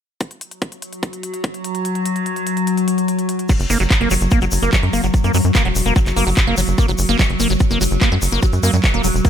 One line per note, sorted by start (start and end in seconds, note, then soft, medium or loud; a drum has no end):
0.21 3.48 F#3 medium
0.21 kick loud
0.21 closed hi-hat medium
0.31 closed hi-hat soft
0.41 closed hi-hat medium
0.51 closed hi-hat soft
0.62 kick loud
0.62 closed hi-hat medium
0.72 closed hi-hat soft
0.82 closed hi-hat loud
0.93 closed hi-hat soft
1.03 kick loud
1.03 closed hi-hat medium
1.13 closed hi-hat soft
1.23 closed hi-hat medium
1.34 closed hi-hat soft
1.44 kick loud
1.44 closed hi-hat medium
1.54 closed hi-hat soft
1.64 closed hi-hat medium
1.75 closed hi-hat soft
1.85 closed hi-hat medium
1.95 closed hi-hat soft
2.06 closed hi-hat loud
2.16 closed hi-hat soft
2.26 closed hi-hat medium
2.36 closed hi-hat soft
2.47 closed hi-hat medium
2.57 closed hi-hat soft
2.67 closed hi-hat medium
2.77 closed hi-hat soft
2.88 closed hi-hat medium
2.98 closed hi-hat soft
3.08 closed hi-hat medium
3.19 closed hi-hat soft
3.29 closed hi-hat loud
3.39 closed hi-hat soft
3.49 3.53 F#3 medium
3.49 9.30 F#3 medium
3.49 kick loud
3.49 closed hi-hat medium
3.49 crash loud
3.49 shaker medium
3.60 3.66 F#1 medium
3.60 closed hi-hat soft
3.60 shaker soft
3.70 3.77 F#1 loud
3.70 3.78 A#3 medium
3.70 open hi-hat loud
3.70 shaker loud
3.80 3.87 F#1 medium
3.80 3.84 F#3 medium
3.80 closed hi-hat soft
3.80 shaker soft
3.91 kick loud
3.91 clap loud
3.91 closed hi-hat medium
3.91 shaker soft
4.01 4.07 F#1 medium
4.01 4.09 A#3 medium
4.01 closed hi-hat soft
4.11 4.18 F#1 loud
4.11 4.14 F#3 medium
4.11 open hi-hat loud
4.11 shaker medium
4.21 4.28 F#1 medium
4.21 closed hi-hat soft
4.21 shaker soft
4.31 4.40 A#3 medium
4.31 kick loud
4.31 closed hi-hat medium
4.31 shaker soft
4.42 4.48 F#1 medium
4.42 4.45 F#3 medium
4.42 closed hi-hat soft
4.42 shaker soft
4.51 4.59 F#1 loud
4.51 open hi-hat loud
4.51 shaker loud
4.62 4.69 F#1 medium
4.62 4.71 A#3 medium
4.62 closed hi-hat soft
4.62 shaker soft
4.73 4.76 F#3 medium
4.73 kick loud
4.73 clap loud
4.73 closed hi-hat medium
4.73 shaker medium
4.83 4.90 F#2 medium
4.83 closed hi-hat soft
4.93 5.00 F#1 medium
4.93 5.01 A#3 medium
4.93 open hi-hat loud
4.93 shaker medium
5.03 5.10 F#1 medium
5.03 5.07 F#3 medium
5.03 closed hi-hat soft
5.03 shaker soft
5.14 kick loud
5.14 closed hi-hat medium
5.14 shaker medium
5.24 5.31 F#2 medium
5.24 5.32 A#3 medium
5.24 closed hi-hat soft
5.24 shaker soft
5.34 5.41 F#2 loud
5.34 5.38 F#3 medium
5.34 open hi-hat loud
5.34 shaker medium
5.44 5.51 F#2 medium
5.44 closed hi-hat soft
5.44 shaker soft
5.55 5.63 A#3 medium
5.55 kick loud
5.55 clap loud
5.55 closed hi-hat medium
5.55 shaker medium
5.65 5.72 E1 medium
5.65 5.68 F#3 medium
5.65 closed hi-hat soft
5.75 5.82 E1 loud
5.75 open hi-hat loud
5.75 shaker loud
5.86 5.92 E1 medium
5.86 5.94 A#3 medium
5.86 closed hi-hat soft
5.86 shaker soft
5.96 5.99 F#3 medium
5.96 kick loud
5.96 closed hi-hat medium
5.96 shaker medium
6.06 6.13 F#1 medium
6.06 clap soft
6.06 closed hi-hat soft
6.06 shaker soft
6.16 6.23 F#1 medium
6.16 6.25 A#3 medium
6.16 open hi-hat loud
6.16 shaker medium
6.27 6.33 F#1 loud
6.27 6.30 F#3 medium
6.27 open hi-hat medium
6.27 shaker soft
6.37 kick loud
6.37 clap loud
6.37 shaker medium
6.47 6.54 F#1 medium
6.47 6.56 A#3 medium
6.47 closed hi-hat soft
6.57 6.64 F#1 medium
6.57 6.61 F#3 medium
6.57 open hi-hat loud
6.57 shaker medium
6.67 6.74 F#1 medium
6.67 closed hi-hat soft
6.67 shaker soft
6.78 6.86 A#3 medium
6.78 kick loud
6.78 closed hi-hat medium
6.78 shaker medium
6.88 6.95 F#1 medium
6.88 6.92 F#3 medium
6.88 closed hi-hat soft
6.88 shaker soft
6.98 7.05 F#1 loud
6.98 open hi-hat loud
6.98 shaker loud
7.09 7.16 F#1 medium
7.09 7.17 A#3 medium
7.09 closed hi-hat soft
7.09 shaker soft
7.19 7.23 F#3 medium
7.19 kick loud
7.19 clap loud
7.19 closed hi-hat medium
7.19 shaker medium
7.30 7.36 F#1 medium
7.30 closed hi-hat soft
7.40 7.46 F#1 loud
7.40 7.48 A#3 medium
7.40 open hi-hat loud
7.40 shaker medium
7.50 7.57 F#1 medium
7.50 7.53 F#3 medium
7.50 closed hi-hat soft
7.50 shaker soft
7.60 kick loud
7.60 closed hi-hat medium
7.60 shaker soft
7.71 7.77 F#1 medium
7.71 7.79 A#3 medium
7.71 closed hi-hat soft
7.71 shaker soft
7.81 7.88 F#1 medium
7.81 7.84 F#3 medium
7.81 open hi-hat loud
7.81 shaker loud
7.91 7.98 F#1 medium
7.91 closed hi-hat soft
7.91 shaker soft
8.01 8.10 A#3 medium
8.01 kick loud
8.01 clap loud
8.01 closed hi-hat medium
8.01 shaker soft
8.12 8.18 F#2 medium
8.12 8.15 F#3 medium
8.12 closed hi-hat soft
8.22 8.29 F#1 loud
8.22 open hi-hat loud
8.22 shaker loud
8.32 8.39 F#1 medium
8.32 8.40 A#3 medium
8.32 closed hi-hat soft
8.32 shaker soft
8.42 8.46 F#3 medium
8.42 kick loud
8.42 closed hi-hat medium
8.42 shaker medium
8.53 8.59 F#2 medium
8.53 closed hi-hat soft
8.53 shaker soft
8.63 8.70 F#2 loud
8.63 8.71 A#3 medium
8.63 open hi-hat loud
8.63 shaker medium
8.73 8.80 F#2 medium
8.73 8.77 F#3 medium
8.73 closed hi-hat soft
8.73 shaker soft
8.84 kick loud
8.84 clap loud
8.84 closed hi-hat medium
8.84 shaker soft
8.94 9.01 E1 medium
8.94 9.02 A#3 medium
8.94 closed hi-hat soft
9.04 9.11 E1 loud
9.04 9.07 F#3 medium
9.04 open hi-hat loud
9.04 shaker medium
9.14 9.21 E1 medium
9.14 closed hi-hat soft
9.14 shaker soft
9.25 9.30 A#3 medium
9.25 kick loud
9.25 closed hi-hat medium
9.25 shaker soft